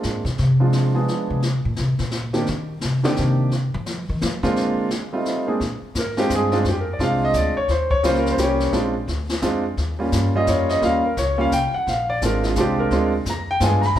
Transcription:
Already playing: G#3 A#3 C4 D4 F4
0.03 G#2, snare
0.25 B2, snare
0.38 C3, brush sweep, snare
0.60 F3 G#3 C4 D4 F4
0.73 snare
0.94 F3 G#3 B3 D4 G#4
1.08 snare
1.30 C3
1.42 brush sweep, snare
1.65 A#2
1.76 C3, snare
1.99 A#2, snare
2.11 snare
2.33 D#3 A#3 C4 D4 G4, snare
2.46 D#3, brush sweep, snare
2.81 C3, snare
3.03 D3 D#3 A#3 C4 D4 G4, snare
3.16 C3, snare
3.51 brush sweep, snare
3.74 F3
3.86 snare
4.09 D#3
4.21 F3, snare
4.43 D3 G#3 A#3 C4 D4 F4, snare
4.56 brush sweep, snare
4.90 snare
5.13 G3 A3 C4 D#4 F4
5.25 snare
5.47 G#3 A#3 C4 D4 G#4
5.60 A#2, brush sweep, kick, snare
5.81 muted upright bass stroke
5.95 G#2, kick, snare, hi-hat pedal
5.99 A#4
6.17 G#3 C4 D4 F4 G4, snare
6.30 G2, kick, snare, hi-hat pedal
6.35 G#4
6.52 G#3 C4 D4 F4, snare
6.64 F2, brush sweep, kick, snare
6.69 G4
6.81 A#4
6.93 D5
6.99 C2 G#3 C4 D4 F4, kick, snare
7.03 F5
7.25 D#5
7.33 D2 D5, kick, snare, hi-hat pedal
7.56 C#5, muted upright bass stroke
7.68 D#2 C5, brush sweep, kick, snare
7.91 C#5, kick
8.03 C#2 G3 A#3 C#4 F4 C5, kick, snare, hi-hat pedal
8.15 A#4, snare
8.26 snare
8.31 C5
8.38 C2 G3 A#3 C#4 G4, kick, snare, hi-hat pedal
8.43 C#5
8.60 snare
8.72 A#1 G#3 C4 D4 F4, brush sweep, kick, snare
9.07 D2, kick, snare
9.29 snare
9.42 F2 G#3 C4 D4 F4, kick, snare, hi-hat pedal
9.77 D#2, brush sweep, kick, snare
9.99 G3 A#3 C#4 F4
10.12 G2, kick, snare, hi-hat pedal
10.36 G3 A#3 C#4 F4 D#5
10.47 F2 C#5, kick, snare, hi-hat pedal
10.69 D#5, snare
10.81 D#2 G3 A#3 C#4 F4 F5, brush sweep, kick, snare
11.05 A#4
11.17 C#2 C#5, kick, snare, hi-hat pedal
11.38 G3 A#3 C#4 F4 F5
11.52 C2 G5, kick, snare, hi-hat pedal
11.74 F#5, muted upright bass stroke
11.87 A#1 F5, brush sweep, kick, snare
12.10 D5
12.22 G#1 G#3 C4 D4 F4 A#4, kick, snare, hi-hat pedal
12.42 E4, snare
12.47 F4
12.56 C2 G#3 C4 D4 F4, kick, snare, hi-hat pedal
12.60 G4
12.80 A#4
12.91 D2 G#3 C4 D4 F4, brush sweep, kick, snare
13.25 F2, kick, snare, hi-hat pedal
13.30 A#5
13.51 G5
13.60 G2 G#3 B3 D4 F4 G#5, kick, snare, hi-hat pedal
13.81 A#5, snare
13.86 B5
13.95 C3, brush sweep, kick, snare

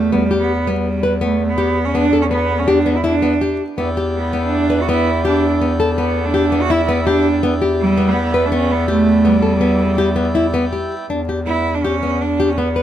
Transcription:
Already playing: A3
0.12 E2 G3 B3
0.31 G4
0.40 B3
0.67 G3 B3
1.03 B4
1.21 A3 B3
1.49 B3
1.58 G4
1.85 C#4
1.95 B3 D4
2.13 A4
2.22 C#4
2.31 B3
2.59 C#4
2.68 D4 G4
2.86 B3
2.95 E4
3.04 D4 E4
3.22 B3
3.41 G4
3.77 E2 B3 E4 D5 G5
3.97 G4
4.17 B3
4.33 B3
4.44 D4
4.70 B4
4.81 F#4
4.89 B3 E4
5.25 D4 G4
5.62 B3
5.80 A4
5.97 B3
6.25 D4
6.34 G4
6.52 B3
6.61 F#4
6.70 E4
6.89 B3
7.07 D4 G4
7.43 E2 B3
7.62 G4
7.81 G3
7.97 B3
8.08 B3
8.34 B4
8.45 D4
8.52 B3 C#4
8.71 B3
8.88 A3 G4
9.25 G3 B3
9.42 A4
9.61 B3
9.98 G4
10.16 B3
10.35 E4
10.54 B3
10.73 G4
11.09 E2 D4
11.29 G4
11.47 B3 E4
11.75 D4
11.83 C#4 G4
12.03 B3
12.21 D4
12.40 G4
12.49 C#4
12.58 B3
12.76 B4

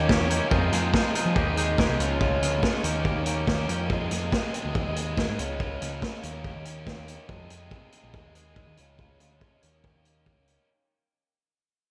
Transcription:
Already playing: D#2
0.08 D#3 A#3 C#4 G4 C#5, kick, snare
0.20 E2
0.30 D#3 A#3 C#4 G4 C#5, closed hi-hat
0.51 F2 C3 F3 G#3 C4 D#4 F4 G#4 C5, kick
0.72 F2 C3 F3 G#3 C4 D#4 F4 G#4 C5, snare, closed hi-hat
0.93 F2 C3 F3 G#3 C4 D#4 F4 G#4 C5, kick, snare
1.14 F2 C3 F3 G#3 C4 D#4 F4 G#4 C5, closed hi-hat
1.26 F3
1.35 D#2 D#3 G#3 C4 D#4 G4 G#4 C5, kick
1.46 D#2
1.57 D#3 G#3 C4 D#4 G4 G#4 C5, closed hi-hat
1.78 D#3 G#3 C4 D#4 G4 G#4 C5, kick, snare
1.89 C2
1.99 C#2 C#3 F3 G#3 C#4 F4, closed hi-hat
2.19 C#3 F3 G#3 C#4 F4, kick
2.41 D2 C#3 F3 G#3 C#4 F4, snare, closed hi-hat
2.62 C#3 F3 G#3 C#4 F4, kick, snare
2.84 D#2 D#3 A#3 C#4 G4, closed hi-hat
3.05 D#3 A#3 C#4 G4, kick
3.15 D#2
3.26 D#3 A#3 C#4 G4, closed hi-hat
3.47 D#2 D#3 A#3 C#4 G4, kick, snare
3.68 F2 D#3 A#3 C#4 G4, closed hi-hat
3.89 F2 C3 F3 G#3 C4 G#4, kick
4.10 F2 C3 F3 G#3 C4 G#4, snare, closed hi-hat
4.32 F2 C3 F3 G#3 C4 G#4, kick, snare
4.53 F2 C3 F3 G#3 C4 G#4, closed hi-hat
4.65 D2
4.75 D#2 D#3 G#3 C4 G#4, kick
4.86 D#2
4.96 D#3 G#3 C4 G#4, closed hi-hat
5.17 D#3 G#3 C4 G#4, kick, snare
5.29 G#2
5.38 C#2 C#3 F3 G#3 C#4 F4, closed hi-hat
5.60 C#3 F3 G#3 C#4 F4, kick
5.80 C#2 C#3 F3 G#3 C#4 F4, snare, closed hi-hat
6.01 C#3 F3 G#3 C#4 F4, kick, snare
6.14 snare
6.22 D#2 D#3 A#3 C#4 G4, closed hi-hat
6.44 D#3 A#3 C#4 G4, kick
6.55 D#2
6.65 D#3 A#3 C#4 G4, closed hi-hat
6.86 D#3 A#3 C#4 G4, kick, snare
6.97 D#2
7.07 D#3 A#3 C#4 G4, closed hi-hat
7.28 F2 C3 F3 G#3 C4 G#4, kick
7.49 F2 C3 F3 G#3 C4 G#4, closed hi-hat
7.70 F2 C3 F3 G#3 C4 G#4, kick
7.92 F2 C3 F3 G#3 C4 G#4, closed hi-hat
8.03 A#1
8.13 D#2 D#3 G#3 C4 G#4, kick
8.25 D#2
8.34 D#3 G#3 C4 G#4, closed hi-hat
8.56 D#3 G#3 C4 G#4, kick
8.67 D#2
8.77 C#2 C#3 F3 G#3 C#4 F4, closed hi-hat
8.98 C#3 F3 G#3 C#4 F4, kick
9.19 D2 C#3 F3 G#3 C#4 F4, closed hi-hat
9.41 C#3 F3 G#3 C#4 F4, kick
9.63 D#2 D#3 A#3 C#4 G4, closed hi-hat
9.84 D#3 A#3 C#4 G4, kick
9.95 D#2
10.04 D#3 A#3 C#4 G4, closed hi-hat
10.26 D#3 A#3 C#4 G4, kick
10.38 C#2
10.47 D#3 A#3 C#4 G4, closed hi-hat

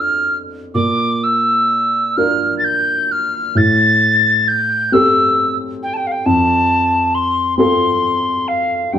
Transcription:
Already playing: F2 D4 F4 A4
0.01 F6
0.74 A#2 D6
1.24 E6
2.17 D4 F4 A#4 F6
2.58 A6
2.64 G6
3.12 F6
3.55 A2 A6
4.48 G6
4.92 C4 G4 A4 E6
5.83 G5
5.94 G5 A5
6.07 F5
6.12 G5
6.26 F2 A5
7.15 C6
7.58 C4 F4 A4 C6
8.48 F5
8.93 G2 G5

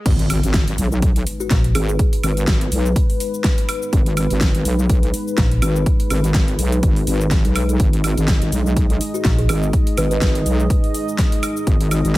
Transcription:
0.05 G#1 G#3 D#4 B4, kick, closed hi-hat, crash, impact, shaker
0.19 closed hi-hat
0.30 open hi-hat, high woodblock, shaker
0.43 G#1, closed hi-hat, shaker
0.54 kick, snare, closed hi-hat, shaker
0.68 G#1, closed hi-hat
0.78 B1, open hi-hat, shaker
0.92 shaker
1.02 kick, closed hi-hat, shaker
1.16 closed hi-hat
1.27 open hi-hat, shaker
1.40 F#4, shaker
1.50 A#1, kick, snare, closed hi-hat, shaker
1.64 closed hi-hat
1.75 G#1 G#4, open hi-hat, high woodblock, shaker
1.89 G#4, shaker
1.99 kick, closed hi-hat, shaker
2.13 closed hi-hat
2.23 G#1, open hi-hat, high woodblock, shaker
2.37 closed hi-hat, shaker
2.47 G#1, kick, snare, closed hi-hat, shaker
2.61 closed hi-hat
2.72 B1, open hi-hat, shaker
2.86 shaker
2.96 kick, closed hi-hat, shaker
3.10 open hi-hat
3.20 open hi-hat, shaker
3.34 shaker
3.44 kick, snare, closed hi-hat, shaker
3.58 closed hi-hat
3.69 open hi-hat, high woodblock, shaker
3.82 shaker
3.93 G#1, kick, closed hi-hat, shaker
4.06 closed hi-hat
4.17 open hi-hat, high woodblock, shaker
4.30 G#1, closed hi-hat, shaker
4.41 kick, snare, closed hi-hat, shaker
4.55 G#1, closed hi-hat
4.65 B1, open hi-hat, shaker
4.79 shaker
4.89 kick, closed hi-hat, shaker
5.03 closed hi-hat
5.14 open hi-hat, shaker
5.28 shaker
5.38 A#1, kick, snare, closed hi-hat, shaker
5.51 closed hi-hat
5.62 G#1, open hi-hat, high woodblock, shaker
5.76 shaker
5.86 kick, closed hi-hat, shaker
6.00 closed hi-hat
6.10 G#1, open hi-hat, high woodblock, shaker
6.24 closed hi-hat, shaker
6.34 G#1, kick, snare, closed hi-hat, shaker
6.48 closed hi-hat
6.59 B1, open hi-hat, shaker
6.72 closed hi-hat, shaker
6.83 G#1, kick, closed hi-hat, shaker
6.96 open hi-hat
7.07 G#1, open hi-hat, shaker
7.21 shaker
7.31 kick, snare, closed hi-hat, shaker
7.45 B1, closed hi-hat
7.56 open hi-hat, high woodblock, shaker
7.69 closed hi-hat, shaker
7.80 G#1 D#5, kick, closed hi-hat, shaker
7.93 closed hi-hat
8.04 open hi-hat, high woodblock, shaker
8.18 G#1, closed hi-hat, shaker
8.28 kick, snare, closed hi-hat, shaker
8.42 G#1, closed hi-hat
8.52 B1, open hi-hat, shaker
8.66 shaker
8.77 kick, closed hi-hat, shaker
8.90 closed hi-hat
9.01 open hi-hat, shaker
9.14 F#4, shaker
9.25 A#1, kick, snare, closed hi-hat, shaker
9.38 G#4, closed hi-hat
9.49 G#1 G#4, open hi-hat, high woodblock, shaker
9.63 shaker
9.73 kick, closed hi-hat, shaker
9.87 closed hi-hat
9.97 G#1 B4, open hi-hat, high woodblock, shaker
10.11 B4, closed hi-hat, shaker
10.21 G#1, kick, snare, closed hi-hat, shaker
10.35 closed hi-hat
10.46 B1, open hi-hat, shaker
10.60 shaker
10.70 kick, closed hi-hat, shaker
10.84 open hi-hat
10.94 open hi-hat, shaker
11.08 shaker
11.18 kick, snare, closed hi-hat, shaker
11.32 closed hi-hat
11.43 open hi-hat, high woodblock, shaker
11.57 shaker
11.67 G#1, kick, closed hi-hat, shaker
11.81 closed hi-hat
11.91 open hi-hat, high woodblock, shaker
12.05 G#1, closed hi-hat, shaker

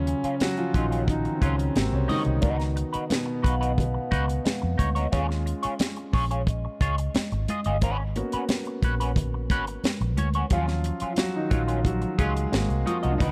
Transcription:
Already playing: D#2 C#3 F#3 C#4 F4
0.07 G#5, muted clean electric guitar stroke, closed hi-hat
0.24 F#3 C#4 F4, muted fingered electric bass stroke, closed hi-hat
0.40 F#3 F#4, muted clean electric guitar stroke, snare, closed hi-hat, high conga
0.57 F3 F4, muted clean electric guitar stroke, closed hi-hat
0.74 A#1 D#3 F#3 C#4 D#4 F4, kick, closed hi-hat, muted conga
0.90 F#3 C#4 F4, closed hi-hat
1.08 D#3 D#4 A#5, kick, closed hi-hat
1.25 muted clean electric guitar stroke, closed hi-hat
1.34 C4
1.41 C#2 C#3 F#3 C#4 F4, kick, closed hi-hat, muted conga
1.59 closed hi-hat
1.76 G#1 C3 A#3 C4 F#4, snare, closed hi-hat, high conga
1.92 C2 C#3 C#4, muted clean electric guitar stroke
2.08 D#3 D#4 F#4 D#5, open hi-hat, high conga
2.25 C2, muted clean electric guitar stroke, closed hi-hat
2.41 C#2 B3 D#4 F#4 B4, kick, closed hi-hat, muted conga
2.59 muted clean electric guitar stroke, snare, closed hi-hat
2.76 muted clean electric guitar stroke, closed hi-hat
2.93 D#4 F#4 B4, muted fingered electric bass stroke, closed hi-hat
3.10 B2 B3, muted clean electric guitar stroke, snare, closed hi-hat, high conga
3.26 muted clean electric guitar stroke
3.42 B1 D#4 F#4 B4, kick, closed hi-hat, muted conga
3.48 F5 F#5
3.61 D#4 F#4 B4, closed hi-hat
3.78 B2 B3, kick, closed hi-hat, low conga
3.94 muted clean electric guitar stroke
4.11 C#2 D#4 F#4 B4, kick, closed hi-hat, muted conga
4.28 muted clean electric guitar stroke, closed hi-hat
4.45 muted clean electric guitar stroke, snare, closed hi-hat, high conga
4.62 F2, muted clean electric guitar stroke
4.78 D2 D#4 F#4 C#5, kick, closed hi-hat, high conga
4.95 D#4 F#4 C#5, closed hi-hat
5.12 D#2 G#3 C#4 F4 G#4 C#5, kick, closed hi-hat, muted conga
5.31 snare
5.46 muted clean electric guitar stroke, closed hi-hat
5.63 F4 G#4 C#5, muted fingered electric bass stroke, closed hi-hat
5.79 muted clean electric guitar stroke, snare, closed hi-hat, high conga
5.96 muted clean electric guitar stroke, closed hi-hat
6.13 A#1 F4 G#4 C#5, kick, open hi-hat, muted conga
6.31 F4 G#4 C#5, closed hi-hat
6.47 D#5, kick, closed hi-hat
6.65 muted clean electric guitar stroke
6.81 C#2 F4 G#4 C#5, kick, closed hi-hat, muted conga
6.98 muted clean electric guitar stroke, closed hi-hat
7.14 muted clean electric guitar stroke, muted fingered electric bass stroke, snare, closed hi-hat, high conga
7.32 G#1, muted clean electric guitar stroke, closed hi-hat
7.48 F4 G#4 D#5, closed hi-hat, high conga
7.64 G1 F4 G#4 D#5, closed hi-hat
7.81 G#1 C#4 F#4 B4, kick, closed hi-hat, muted conga
8.00 muted clean electric guitar stroke
8.16 A#3 B3 C#4 F#4, muted clean electric guitar stroke, closed hi-hat
8.32 C#4 F#4 B4, muted fingered electric bass stroke, closed hi-hat
8.49 muted clean electric guitar stroke, snare, closed hi-hat, high conga
8.65 muted clean electric guitar stroke, closed hi-hat
8.82 A#1 C#4 F#4 B4, kick, closed hi-hat, muted conga
9.00 C#4 F#4 B4, closed hi-hat
9.16 muted clean electric guitar stroke, kick, closed hi-hat, low conga
9.34 muted clean electric guitar stroke
9.50 G#1 C#4 F#4 B4, kick, closed hi-hat, muted conga
9.67 muted clean electric guitar stroke, closed hi-hat
9.84 muted clean electric guitar stroke, snare, closed hi-hat, high conga
10.01 A#1, muted clean electric guitar stroke, closed hi-hat
10.16 D2 C#4 F#4 C#5, closed hi-hat, high conga
10.34 C#4 F#4 C#5, closed hi-hat
10.50 D#2 F3 F#3 C#4 F4, kick, closed hi-hat, muted conga
10.68 snare
10.84 muted clean electric guitar stroke, closed hi-hat
11.00 F#3 C#4 F4, muted fingered electric bass stroke, closed hi-hat
11.13 F4, closed hi-hat
11.18 F#3 F#4, muted clean electric guitar stroke, snare, high conga
11.35 D#3 D#4, muted clean electric guitar stroke
11.50 A#1 F3 F#3 C#4 F4, kick, closed hi-hat, muted conga
11.68 F#3 C#4 F4, closed hi-hat
11.85 F#3 F#4, kick, closed hi-hat
12.02 muted clean electric guitar stroke, closed hi-hat
12.18 C#2 F#3 G#3 C#4 F4 G#4 F5, kick, closed hi-hat, muted conga
12.37 muted clean electric guitar stroke, closed hi-hat
12.52 G#1 A#3 C4 F#4, muted clean electric guitar stroke, snare, closed hi-hat, high conga
12.69 C2, muted clean electric guitar stroke, closed hi-hat
12.86 F3 D#4 F4 F#4 D#5, closed hi-hat, high conga
13.03 C2 D#4 F#4 D#5, closed hi-hat
13.11 D4
13.18 C#2 D#3 D#4 F#4 B4, kick, closed hi-hat, muted conga

